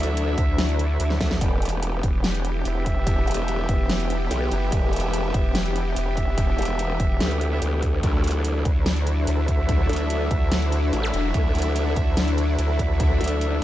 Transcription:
Already playing: D2 F#3 D4 E4 F#4 A4 E5 F#5
0.03 closed hi-hat
0.17 closed hi-hat
0.38 D2, kick, closed hi-hat
0.58 snare, closed hi-hat
0.69 closed hi-hat
0.79 closed hi-hat
0.90 D4 F#4 E5
1.00 D2, closed hi-hat
1.10 snare
1.21 D2, kick, snare, closed hi-hat
1.31 snare
1.41 E1 E3 B3 G4, kick, closed hi-hat
1.59 G4, closed hi-hat
1.65 closed hi-hat
1.69 G5, closed hi-hat
1.83 closed hi-hat
2.03 E1, kick, closed hi-hat
2.24 snare, closed hi-hat
2.34 closed hi-hat
2.45 closed hi-hat
2.55 B3 G4 E5
2.65 E1, closed hi-hat
2.86 kick, closed hi-hat
3.07 kick, closed hi-hat
3.27 E1, closed hi-hat
3.31 closed hi-hat
3.34 closed hi-hat
3.48 closed hi-hat
3.69 E1, kick, closed hi-hat
3.89 snare, closed hi-hat
4.00 closed hi-hat
4.10 closed hi-hat
4.20 B3 G4 E5
4.31 B1, closed hi-hat
4.51 F#1, closed hi-hat
4.72 E1, kick, closed hi-hat
4.93 closed hi-hat
4.96 closed hi-hat
5.00 closed hi-hat
5.14 closed hi-hat
5.34 E1, kick, closed hi-hat
5.55 snare, closed hi-hat
5.65 closed hi-hat
5.76 closed hi-hat
5.86 B3 G4 E5
5.96 E1, closed hi-hat
6.17 kick, closed hi-hat
6.38 kick, closed hi-hat
6.58 E1, closed hi-hat
6.62 closed hi-hat
6.65 closed hi-hat
6.79 closed hi-hat
7.00 E1, kick, closed hi-hat
7.20 D2, snare, closed hi-hat
7.31 closed hi-hat
7.41 closed hi-hat
7.52 B3 G4 E5
7.62 D2, closed hi-hat
7.72 B3 G4 E5
7.83 kick, closed hi-hat
8.03 D2 F#3 D4 E4, kick, closed hi-hat
8.24 A4 E5, closed hi-hat
8.27 closed hi-hat
8.31 closed hi-hat
8.45 closed hi-hat
8.65 D2, kick, closed hi-hat
8.72 F#5
8.86 snare, closed hi-hat
8.96 closed hi-hat
9.07 closed hi-hat
9.17 D4 F#4 E5
9.27 D2, closed hi-hat
9.48 kick, closed hi-hat
9.69 kick, closed hi-hat
9.89 D2, closed hi-hat
9.93 closed hi-hat
9.96 closed hi-hat
10.10 closed hi-hat
10.31 D2, kick, closed hi-hat
10.52 snare, closed hi-hat
10.62 closed hi-hat
10.72 closed hi-hat
10.83 D4 F#4 E5
10.93 A1, closed hi-hat
11.03 zap
11.14 E1, closed hi-hat
11.34 D2, kick, closed hi-hat
11.55 closed hi-hat
11.58 closed hi-hat
11.62 closed hi-hat
11.76 closed hi-hat
11.96 D2, kick, closed hi-hat
12.17 snare, closed hi-hat
12.28 closed hi-hat
12.38 closed hi-hat
12.48 D4 F#4 E5
12.59 D2, closed hi-hat
12.79 kick, closed hi-hat
13.00 kick, closed hi-hat
13.21 D2, closed hi-hat
13.24 closed hi-hat
13.28 closed hi-hat
13.41 closed hi-hat

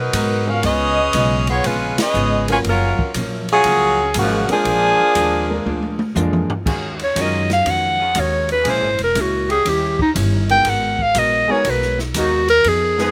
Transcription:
Already playing: B2 F#3 D#4 A#4 B4
0.13 G#2 G#3 B3 F#4 A#4, kick, hi-hat pedal, ride
0.46 G#3 B3 C#4 F4 F#4 A#4 B4 F5
0.63 C#2 C#3 G#3 B3 C#4 F4 G#4 B4 D#5, kick, ride
1.13 B1 C#3 G#3 B3 F4, kick, hi-hat pedal, ride
1.47 B3 F4 G#4 C#5, ride
1.64 A#1 C#3 G#3 B3 C#4 F4 B4, kick, ride
1.98 C#4 G#4 B4 D#5, muted upright bass stroke, snare, ride
2.14 G#1 C#3 G#3 B3 F4, hi-hat pedal
2.48 F#3 A#3 C#4 F4 A#4, ride
2.52 F4 B4 C#5 G#5
2.64 F#1 F#2 F3 A#3 C#4, kick, ride
2.69 F#3 C#4 F4 A#4
2.98 muted upright bass stroke, kick
3.14 A#1 F#2 F3 A#3 C#4, kick, hi-hat pedal, ride
3.49 F#3 C#4 G#4, ride
3.53 F4
3.64 C#2 F#2 F3 A#3 C#4, kick, ride
4.14 G#1 F#2 F3 A#3 C#4, kick, hi-hat pedal, ride
4.18 C#3 F3 A#3 F#4
4.49 F3 G#3 A#3 D4 F4 G#4 A#4, muted upright bass stroke, ride
4.65 A#1 A#2 F3 G#3 D4, kick, ride
4.99 muted upright bass stroke
5.15 D#2 A#2 F3 G#3 D4, kick, hi-hat pedal, ride
5.49 G#3 A#3 D4 F4 A#4
5.65 D2 A#2 F3 G#3 D4, high tom
5.82 high tom
5.99 high tom
6.15 F2 A#2 F3 G#3 A#3 D4 F4 G#4, hi-hat pedal, mid tom
6.33 mid tom
6.50 muted upright bass stroke, floor tom
6.65 D#2 D#3 F#3 G#3 C#4 F4 F#4 G#4, kick, crash
6.99 ride
7.03 C#5
7.15 F#2 D#3 F#3 G#3 C#4 D#4 F4 F#4 G#4 A#4, kick, hi-hat pedal, ride
7.22 D#5
7.50 F5, snare, ride
7.65 F2 D#3 G#3 C#4 F#4, kick, ride
7.71 F#5
7.99 F#3 C#4 F4 G#4
8.15 D#2 D#3 G#3 C#4 F#4, kick, hi-hat pedal, ride
8.20 C#5
8.49 B4, ride
8.63 A#1 A#2 E3 G#3 A#3 C#4 G#4, kick, ride
8.68 C#4 E4 C5
8.81 G#1
8.98 E1, ride
9.04 A#4
9.15 C#2 A#2 G#3 C#4 E4, kick, hi-hat pedal, ride
9.21 F#4
9.47 C#4 D#4 E4 G4, ride
9.51 G#4
9.65 D#2 D#3 G3 C#4 E4, kick, ride
9.69 G4
9.99 D#4, kick
10.14 G1 D#3 G3 C#4 E4, kick, hi-hat pedal, ride
10.49 G#3 B3 D#4 F#4 A#4 G5, ride
10.65 G#1 G#3 B3 F#4 A#4, kick, ride
10.69 F#5
10.99 F5, kick
11.15 A#1 G#3 B3 F#4 A#4, kick, hi-hat pedal, ride
11.19 D#5
11.48 F#3 G#3 A#3 B3 D#4 F#4 G#4 A#4 C#5, muted upright bass stroke
11.64 B1 G#3 B3 F#4 A#4, kick, ride
11.70 B4
11.82 snare
11.99 D#4, snare
12.14 D#2 F#3 G#3 A#3 B3 D#4 F#4 A#4, kick, hi-hat pedal, ride
12.19 F#4
12.48 A#4, ride
12.64 F2 F3 B3 D#4 G#4, kick, ride
12.68 G#4
12.98 F3 G#3 B3 D#4 F4 G#4 B4, snare

